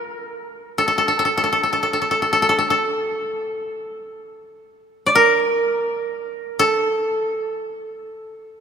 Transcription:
Already playing: F4 A#4
0.78 A4
0.88 A4
0.98 A4
1.08 A4
1.19 A4
1.25 A4
1.38 A4
1.44 A4
1.53 A4
1.63 A4
1.73 A4
1.83 A4
1.93 A4
2.02 A4
2.11 A4
2.22 A4
2.33 A4
2.42 A4
2.49 A4
2.59 A4
2.70 A4
5.06 D5
5.15 A#4
6.59 A4

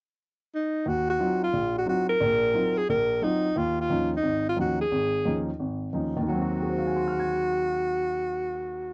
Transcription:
0.55 D#4
0.86 D#2 F#4
1.10 F#4
1.19 F#3 C4 D#4 F4
1.43 F4
1.53 A#1
1.78 F#4
1.86 F#3 C4 D#4 F4 F#4
2.09 A#4
2.20 A#1 A#2
2.54 F#3 C4 D#4 F4
2.77 G#4
2.89 A#1 A#4
3.22 F#3 C4 D#4 F4
3.56 D#2 F4
3.81 F4
3.90 D#2 F3 C#4 D#4
4.16 D#4
4.23 G#1
4.49 F4
4.57 D#2 F3 C#4 D#4 F#4
4.81 G#4
4.91 G#1
5.25 D#2 F3 C#4 D#4
5.59 G#1
5.93 D#2 F3 C#4 D#4
6.17 D#2
6.23 D#3
6.28 F#3 F#4
6.35 C4
6.42 F#4
6.62 G#4
6.70 C5
6.78 F5
6.87 G#5
6.97 C6
7.08 F6
7.20 G#6

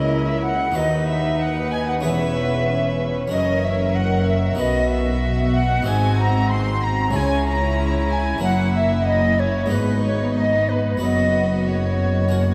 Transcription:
Already playing: C#2 C#3 A#3 E4 A#4 D#5
0.27 E5
0.42 F#5
0.72 D#4 F#4 B4
0.76 D#2 B4 D#5
1.07 E5
1.39 F#5
1.72 G#5
1.88 F#5
2.01 E1 E2 C#4 G#4 B4 E5
3.28 F#1 C#4 F#4 A#4
3.32 F#2 D#5
3.63 E5
3.95 F#5
4.27 E5
4.55 B1 D#4 F#4 B4 D#5
4.59 B2 B3
4.90 E5
5.54 F#5
5.82 G#1 D#4 F#4 C5
5.87 G#2 C4 G#5
6.19 A#5
6.51 C6
6.84 A#5
7.11 C#2 C#3 C#4 E4 C#5
7.15 C#3 G#5
7.47 A#5
8.11 G#5
8.38 F#1 A#3 C#4 E4 A#4
8.42 F#2 F#5
8.74 E5
9.06 D#5
9.38 C#5
9.66 G#3 B3 D#4
9.70 G#1 G#2 B3 D#4 B4
10.02 C#5
10.35 D#5
10.68 B4
10.97 F#2 B3 F#4 B4
11.02 F#1 F#2 D#5
11.67 C#5
12.29 C#4 F#4 A#4
12.33 A#3

